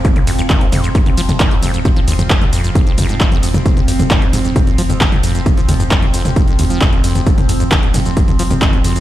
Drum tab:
RD |--x---x---x---x-|--x---x---x---x-|--x---x---x---x-|--x---x---x---x-|
HH |xxoxxxo-xxoxxxox|xxoxxxoxxxoxxxox|xxoxxxoxxxoxxxox|xxoxxxoxxxoxxxox|
SH |x-xxx-xxx-xxx-xx|x-xxx-xxx-xxx-xx|x-xxx-xxx-xxx-xx|x-xxx-xxx-xxx-xx|
CP |----x-------x---|----x-------x---|----x-------x---|----x-------x---|
T2 |-o--o-o--o-o--o-|o--o-o--o-o--o-o|-o-o--o-o--o-o--|o-o--o-o--o-o--o|
BD |o---o---o---o---|o---o---o---o---|o---o---o---o---|o---o---o---o---|

RD |--x---x---x---x-|
HH |xxoxxxoxxxoxxxox|
SH |x-xxx-xxx-xxx-xx|
CP |----x-------x---|
T2 |-o--o-o--o-o--o-|
BD |o---o---o---o---|